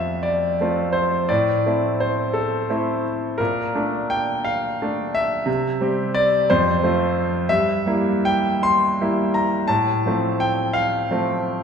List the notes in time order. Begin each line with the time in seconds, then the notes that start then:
Already playing: F2 A3 C4 F4 E5 F5
0.23 D5
0.61 A3 C4 F4
0.93 C5
1.29 A2 D5
1.66 A3 C4 E4
2.00 C5
2.33 A4
2.70 A3 C4 E4
3.38 A#2 A#4
3.75 A3 D4
4.10 G5
4.45 F5
4.82 A3 D4
5.15 E5
5.46 C3
5.81 G3 C4 G4
6.14 D5
6.50 F2 C5
6.83 A3 C4 F4
7.49 G2 E5
7.86 G3 A#3 E4
8.25 G5
8.63 C6
9.01 G3 A#3 E4
9.34 A#5
9.68 A2 A5
10.06 F3 A3 C4
10.40 G5
10.73 F5
11.11 F3 A3 C4